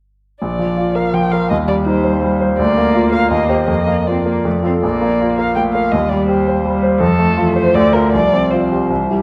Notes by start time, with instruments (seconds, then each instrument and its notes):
0.42 grand piano A#1, cello F3, violin D5
0.59 grand piano F3
0.77 grand piano F4
0.95 grand piano A#4, violin F5
1.14 grand piano F3, violin G5
1.32 grand piano A#4, violin F5
1.49 grand piano D#2, cello G3, violin D#5
1.68 grand piano G3, violin D5
1.86 grand piano D#4, violin C5
2.04 grand piano C5
2.22 grand piano G3
2.41 grand piano C5
2.58 grand piano D2, cello A#3, violin D5
2.77 grand piano A#3
2.94 grand piano F4
3.12 grand piano A#4, violin F5
3.31 grand piano D#2, cello A#3, violin D#5
3.49 grand piano G4 C5
3.68 grand piano F2, cello A#3, violin D#5
3.87 grand piano A#3
4.07 cello C4, grand piano F4, violin D5
4.26 cello A#3, grand piano A#4
4.45 grand piano F2, cello A3
4.62 cello C4, grand piano F4 A4
4.83 grand piano A#1, cello A#3, violin D5
5.01 grand piano A#3
5.20 grand piano F4
5.38 grand piano A#4, violin F5
5.56 cello A3, grand piano A#3, violin G5
5.73 grand piano A#4, violin F5
5.92 grand piano D#2, cello G3, violin D#5
6.09 grand piano G3, violin D5
6.27 grand piano G4, violin C5
6.48 grand piano C5
6.65 cello G3, grand piano G3
6.83 grand piano C5
7.00 grand piano F2, cello F3, violin A4
7.19 grand piano A3
7.37 cello E3, grand piano F4
7.55 violin C5, grand piano C5
7.74 grand piano D2, cello D3, violin D5
7.93 grand piano F4 A#4, violin A#4
8.12 grand piano C2, cello F3, violin D5
8.33 grand piano C4
8.51 grand piano F4, violin C5
8.72 grand piano G4
8.90 grand piano C2, cello E3
9.10 cello G3, grand piano E4 G4